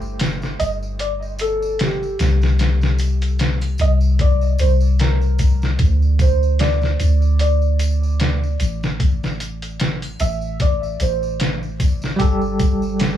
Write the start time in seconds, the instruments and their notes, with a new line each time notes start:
Already playing: 808-style bass G1
0.02 tambourine
0.19 snare, closed hi-hat, tambourine
0.42 snare, tambourine
0.59 808-style bass G1, felt piano D#5, closed hi-hat, tambourine
0.83 tambourine
0.99 felt piano D5, closed hi-hat, tambourine
1.22 tambourine
1.39 felt piano A4, closed hi-hat, tambourine
1.62 tambourine
1.79 felt piano G4, snare, closed hi-hat, tambourine
2.03 tambourine
2.19 808-style bass C2, snare, closed hi-hat, tambourine
2.42 snare, tambourine
2.59 snare, closed hi-hat, tambourine
2.81 snare, tambourine
2.98 closed hi-hat, tambourine
3.21 closed hi-hat, tambourine
3.39 snare, closed hi-hat, tambourine
3.61 closed hi-hat, tambourine, triangle
3.78 808-style bass C2, felt piano D#5, closed hi-hat, tambourine
4.01 tambourine
4.19 felt piano D5, kick, closed hi-hat, tambourine
4.41 tambourine
4.58 808-style bass C2, felt piano C5, closed hi-hat, tambourine
4.80 tambourine
4.99 felt piano A#4, snare, closed hi-hat, tambourine
5.21 tambourine
5.38 kick, closed hi-hat, tambourine
5.62 snare, tambourine
5.79 808-style bass D2, kick, closed hi-hat, tambourine
6.02 tambourine
6.19 felt piano C5, kick, closed hi-hat, tambourine
6.43 tambourine
6.59 felt piano D5, snare, closed hi-hat, tambourine
6.82 snare, tambourine
7.00 808-style bass D2, closed hi-hat, tambourine
7.22 tambourine
7.39 felt piano D5, closed hi-hat, tambourine
7.62 tambourine
7.79 closed hi-hat, tambourine
8.03 tambourine
8.20 snare, closed hi-hat, tambourine
8.43 tambourine
8.60 808-style bass A1, closed hi-hat, tambourine
8.83 snare, tambourine
9.00 kick, closed hi-hat, tambourine
9.23 snare, tambourine
9.40 closed hi-hat, tambourine
9.62 closed hi-hat, tambourine
9.80 snare, closed hi-hat, tambourine
10.02 closed hi-hat, tambourine, triangle
10.20 808-style bass A1, felt piano E5, closed hi-hat, tambourine
10.41 tambourine
10.59 felt piano D5, kick, closed hi-hat, tambourine
10.83 tambourine
11.00 808-style bass A1, felt piano C5, closed hi-hat, tambourine
11.23 tambourine
11.40 snare, closed hi-hat, tambourine
11.63 tambourine
11.80 kick, closed hi-hat, tambourine
12.02 snare, tambourine
12.16 tine electric piano G3 G4, kick, closed hi-hat, tambourine
12.20 808-style bass G1, tine electric piano A4
12.41 tambourine
12.59 kick, closed hi-hat, tambourine
12.82 tambourine
12.99 snare, closed hi-hat, tambourine